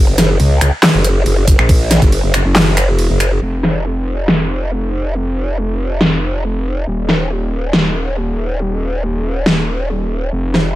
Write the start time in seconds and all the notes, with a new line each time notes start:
Already playing: F#1
0.18 snare, closed hi-hat
0.40 C#2, ride
0.61 C#2, finger snap, closed hi-hat
0.83 snare, clap, ride
0.94 F#1
1.04 closed hi-hat
1.26 F#1, ride
1.48 F#1, kick, closed hi-hat
1.59 A#1, finger snap
1.69 kick, ride
1.91 snare, closed hi-hat
2.02 F#1, kick, closed hi-hat
2.12 ride
2.24 F#1
2.34 finger snap, closed hi-hat
2.45 F#1
2.55 snare, clap, ride
2.77 finger snap, closed hi-hat
2.90 F1
2.99 ride
3.10 F#1
3.20 finger snap, closed hi-hat
3.42 F1
3.63 snare
4.28 snare
6.01 snare
6.87 D#1
7.09 snare
7.73 snare
9.46 snare
10.32 F1
10.54 snare